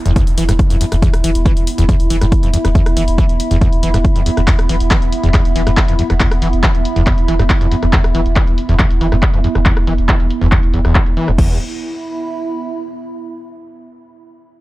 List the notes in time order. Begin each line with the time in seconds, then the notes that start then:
Already playing: B3 E4 E5 B5, downlifter
0.06 E1 E2, closed hi-hat
0.16 E2, kick, closed hi-hat
0.27 E1, closed hi-hat
0.38 E1 E3, open hi-hat
0.49 E1 G2, cross-stick, closed hi-hat
0.59 kick, closed hi-hat
0.70 E1 F2, closed hi-hat
0.81 E2, open hi-hat
0.92 E1 E2, cross-stick, closed hi-hat
1.02 E2, kick, closed hi-hat
1.14 E1, cross-stick, closed hi-hat
1.24 E1 E3, open hi-hat
1.35 E1, closed hi-hat
1.46 E3, kick, closed hi-hat
1.57 E1, closed hi-hat
1.67 open hi-hat
1.78 E1 E2, closed hi-hat
1.89 E2, kick, closed hi-hat
2.00 E1, closed hi-hat
2.10 E1 E3, open hi-hat
2.21 E1 G2, cross-stick, closed hi-hat
2.32 kick, closed hi-hat
2.43 E1 F2, closed hi-hat
2.53 E2, open hi-hat
2.65 E1 E2, cross-stick, closed hi-hat
2.75 E2, kick, closed hi-hat
2.86 E1, cross-stick, closed hi-hat
2.97 E1 E3, open hi-hat
3.08 E1, closed hi-hat
3.18 E3, kick, closed hi-hat
3.29 E1, closed hi-hat
3.40 open hi-hat
3.51 E1 E2, closed hi-hat
3.61 E2, kick, closed hi-hat
3.73 E1, closed hi-hat
3.83 E1 E3, open hi-hat
3.94 E1 G2, cross-stick, closed hi-hat
4.05 kick, closed hi-hat
4.16 E1 F2, closed hi-hat
4.26 E2, open hi-hat
4.37 E1 E2, cross-stick, closed hi-hat
4.48 E2, kick, clap, closed hi-hat
4.59 E1, cross-stick, closed hi-hat
4.69 E1 E3, open hi-hat
4.80 E1, closed hi-hat
4.91 E3, kick, clap, closed hi-hat
5.02 E1, closed hi-hat
5.12 open hi-hat
5.23 E1 E2, closed hi-hat
5.34 E2, kick, clap, closed hi-hat
5.45 E1, closed hi-hat
5.56 E1 E3, open hi-hat
5.67 E1 G2, cross-stick, closed hi-hat
5.77 kick, clap, closed hi-hat
5.88 E1 F2, closed hi-hat
5.99 E2, open hi-hat
6.10 E1 E2, cross-stick, closed hi-hat
6.20 E2, kick, clap, closed hi-hat
6.31 E1, cross-stick, closed hi-hat
6.42 E1 E3, open hi-hat
6.53 E1, closed hi-hat
6.63 E3, kick, clap, closed hi-hat
6.75 E1, closed hi-hat
6.85 open hi-hat
6.96 E1 E2, closed hi-hat
7.07 E2, kick, clap, closed hi-hat
7.18 E1, closed hi-hat
7.28 E1 E3, open hi-hat
7.39 E1 G2, cross-stick, closed hi-hat
7.50 kick, clap, closed hi-hat
7.61 E1 F2, closed hi-hat
7.71 E2, open hi-hat
7.82 E1 E2, cross-stick, closed hi-hat
7.93 E2, kick, clap, closed hi-hat
8.04 E1, cross-stick, closed hi-hat
8.15 E1 E3, open hi-hat
8.26 E1, closed hi-hat
8.36 E3, kick, clap, closed hi-hat
8.47 E1, closed hi-hat
8.58 open hi-hat
8.69 E1 E2, closed hi-hat
8.79 E2, kick, clap, closed hi-hat
8.90 E1, closed hi-hat
9.01 E1 E3, open hi-hat
9.12 E1 G2, cross-stick, closed hi-hat
9.23 kick, clap, closed hi-hat
9.33 E1 F2, closed hi-hat
9.44 E2, open hi-hat
9.55 E1 E2, cross-stick, closed hi-hat
9.66 E2, kick, clap, closed hi-hat
9.77 E1, cross-stick, closed hi-hat
9.87 E1 E3, open hi-hat
9.98 E1, closed hi-hat
10.09 E3, kick, clap, closed hi-hat
10.20 E1, open hi-hat
10.30 open hi-hat
10.41 E1 E2, closed hi-hat
10.52 E2, kick, clap, closed hi-hat
10.63 E1, closed hi-hat
10.74 E1 E2, open hi-hat
10.85 E1 E2, cross-stick, closed hi-hat
10.95 kick, clap, closed hi-hat
11.06 E1, closed hi-hat
11.17 E3, open hi-hat
11.28 E1 E2, cross-stick, closed hi-hat
11.38 E1 E2 B3, kick, crash
11.45 E4
11.52 E5
11.58 B5